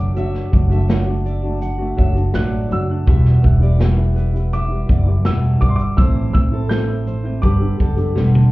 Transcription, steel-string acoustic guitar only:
0.17 E5
0.71 E5
1.25 D5
1.62 F#5
1.97 E5
2.34 D5
3.08 E5
3.62 D5
4.16 B4
4.53 E5
4.90 D5
5.26 B4
5.62 D5
5.99 C5
6.53 A4
7.07 C5
7.44 B4
7.81 A4
8.17 B4

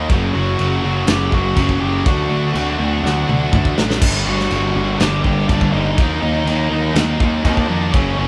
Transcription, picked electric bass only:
0.10 F#1
0.35 F#1
0.59 F#1
0.83 F#1
1.08 F#1
1.32 F#1
1.57 F#1
1.81 F#1
2.06 D2
2.30 D2
2.55 D2
2.79 D2
3.03 D2
3.28 D2
3.52 D2
3.78 A1
4.01 G1
4.26 G1
4.51 G1
4.75 G1
5.00 G1
5.24 G1
5.49 G1
5.73 G1
5.98 D#2
6.22 D#2
6.46 D#2
6.70 D#2
6.95 D#2
7.20 D#2
7.44 D#2
7.69 F2
7.94 F#1
8.17 F#1

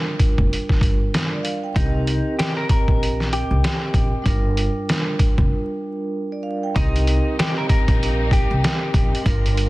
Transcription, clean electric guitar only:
1.76 D#4
2.39 G4
2.57 A#4
2.71 A#4
3.33 G4
6.77 D#4
7.39 G4
7.58 A#4
7.70 A#4
8.33 G4

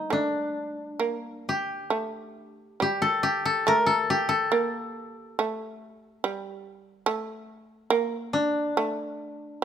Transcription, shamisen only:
0.10 A3
1.00 A#3
1.90 A3
2.80 G3
3.67 A3
4.52 A#3
5.39 A3
6.24 G3
7.06 A3
7.90 A#3
8.77 A3

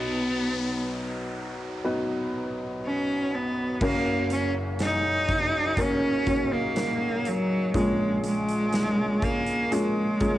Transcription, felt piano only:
Already playing: B1 B2 F#3 B3 D#4 B4
1.84 F#3 B3 D#4 B4
3.82 F#1 F#2 F#3 A#3 C#4 A#4
5.77 F#3 A#3 C#4 A#4
6.27 F#3 A#3 C#4 C#5
7.74 A#1 A#2 F3 A#3 C#4 G#4
9.71 F3 A#3 C#4 G#4
10.20 F3 A#3 C#4 G#4

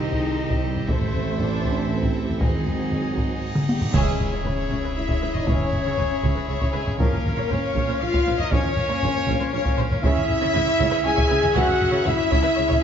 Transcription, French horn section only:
Already playing: D#4
0.64 G3
0.89 A3
1.41 D4
1.91 C4
2.43 C4
3.70 G3
3.95 G#3
4.45 C#4
4.97 E4
5.39 D#4
5.48 C#4
6.49 C#4
6.76 G#3
7.01 A#3
7.50 C#4
8.02 F4
8.41 D#4
8.53 C#4
9.54 C#4
10.03 E4
11.06 G#4
11.57 F#4
12.07 E4

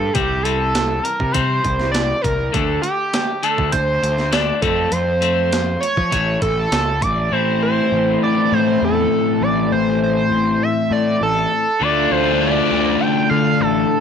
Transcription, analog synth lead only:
Already playing: A4
0.13 G4
0.43 A4
1.03 A#4
1.32 C5
1.92 D5
2.21 A#4
2.53 A4
2.82 G4
3.43 A4
3.72 C5
4.33 D5
4.62 A4
4.92 C5
5.81 C#5
6.42 A4
7.01 D5
7.32 C5
7.62 C5
8.23 D5
8.53 C5
8.84 A4
9.42 D5
9.72 C5
10.03 C5
10.63 E5
10.93 D5
11.23 A4
11.82 D5
12.11 C5
12.41 D5
13.00 G5
13.30 F5
13.61 A4

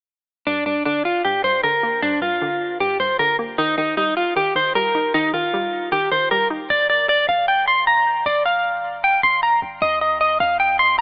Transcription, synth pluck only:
0.47 G2
0.66 G2
0.86 D3
1.25 G2
1.44 G2
1.64 D3
1.83 A#3
2.03 G2
2.21 G2
2.42 D3
2.80 G2
3.00 G2
3.19 D3
3.39 A#3
3.58 D#3
3.78 D#3
3.97 G3
4.36 D#3
4.55 D#3
4.75 G3
4.95 D#4
5.14 D#3
5.34 D#3
5.54 G3
5.92 D#3
6.12 D#3
6.31 G3
6.50 D#4

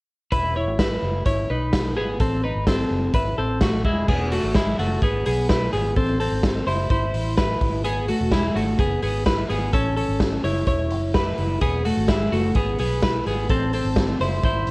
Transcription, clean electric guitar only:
0.32 E4 B4
0.56 E4 C#5
0.79 E4 B4
1.26 E4 C#5
1.50 D#4 B4
1.97 B3 G#4
2.21 C4 A4
2.44 D#4 B4
2.68 C4 A4
3.14 E4 B4
3.38 C4 A4
3.62 A3 F#4
3.85 G#3 E4
4.09 B3 G#4
4.32 A3 F#4
4.56 G#3 E4
4.79 A3 F#4
5.03 B3 G#4
5.26 B3 G#4
5.50 E4 B4
5.73 B3 G#4
5.97 C4 A4
6.20 C4 A4
6.67 E4 C5
6.91 E4 C5
7.37 E4 B4
7.84 B3 G#4
8.08 A3 F#4
8.32 G#3 E4
8.56 A3 F#4
8.80 B3 G#4
9.03 B3 G#4
9.26 E4 B4
9.50 B3 G#4
9.73 C#4 A4
9.97 C#4 A4
10.44 E4 C#5
10.68 E4 C#5
11.15 E4 B4
11.61 B3 G#4
11.85 A3 F#4
12.09 G#3 E4
12.32 A3 F#4
12.56 B3 G#4
12.80 B3 G#4
13.03 E4 B4
13.27 B3 G#4
13.50 C4 A4
13.74 C4 A4
14.21 E4 C5
14.45 E4 C5

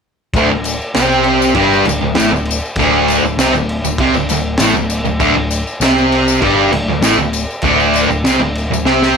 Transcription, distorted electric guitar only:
0.35 D2 D3
0.50 D2
0.95 C3 C4
1.55 G2 G3
1.87 D2
2.01 D2
2.15 A2 A3
2.32 D2
2.78 D2 D3
3.24 D2
3.39 C3 C4
3.54 D2
3.84 D2
4.00 C3 C4
4.15 D2
4.30 D2
4.61 A2 A3
4.75 D2
5.05 D2
5.20 D2 D3
5.35 D2
5.81 C3 C4
6.42 G2 G3
6.73 D2
6.88 D2
7.02 A2 A3
7.17 D2
7.63 D2 D3
8.09 D2
8.24 C3 C4
8.40 D2
8.71 D2
8.86 C3 C4

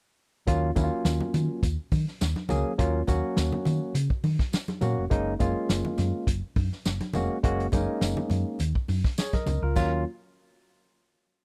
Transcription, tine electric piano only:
0.47 F#3 A#3 C#4 F4
0.76 F#3 A#3 C#4 E4
0.84 F4
2.49 F#3 A#3 C#4 G#4
2.78 F#3 A#3 C#4 F4
3.07 F#3 A#3 C#4 F#4
4.81 F#3 A#3 C#4 F#4
5.10 G#3 A#3 C#4 D#4
5.39 G#3 A#3 C#4 F4
7.14 G#3 A#3 C#4 F#4
7.43 G#3 A#3 C#4 F#4
7.73 G#3 A#3 C#4 D#4
9.18 G#4 C#5
9.33 A#4 D#5
9.63 F4 A#4
9.76 F#3 A#3 C#4 F4

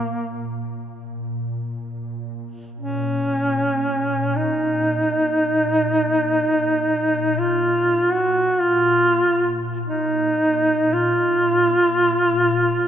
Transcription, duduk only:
Already playing: A#3
2.80 C#4
4.36 D#4
7.38 F4
8.12 F#4
8.61 F4
9.87 D#4
10.93 F4

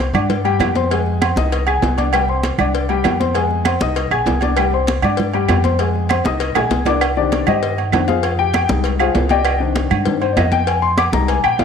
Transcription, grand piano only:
0.14 D4 D5 D6
0.45 G3 G4 G5
0.76 C4 C5 C6
0.91 G#3 G#4 G#5
1.22 C4 C5 C6
1.37 D#4 D#5 D#6
1.67 G#4 G#5 G#6
1.98 D4 D5 D6
2.14 G3 G4 G5
2.29 C4 C5 C6
2.59 D4 D5 D6
2.90 G3 G4 G5
3.20 C4 C5 C6
3.35 G#3 G#4 G#5
3.66 C4 C5 C6
3.81 D#4 D#5 D#6
4.12 G#4 G#5 G#6
4.43 D4 D5 D6
4.58 G3 G4 G5
4.73 C4 C5 C6
5.04 D4 D5 D6
5.34 G3 G4 G5
5.64 C4 C5 C6
5.79 G#3 G#4 G#5
6.11 C4 C5 C6
6.26 D#4 D#5 D#6
6.56 G#4 G#5 G#6
6.87 D4 D5 D6
7.17 D#3 C4 D4 G4 D5
7.48 D#4 G4 C5 D#5
7.93 D#3 C4 D4
8.08 F4 G#4 C5 F5
8.39 G4 G5
8.69 G3 G#3 D#4
9.00 F4 G#4 C5 F5
9.31 G4 D5 D#5 G5
9.60 D#3 C4 D4
10.06 D#3 C4 D4
10.21 C5
10.33 D5
10.37 D#5
10.52 G5
10.67 G#5
10.82 C6
10.98 D6
11.13 G3 G#3 D#4 A#5
11.29 G#5
11.44 G5
11.59 F5

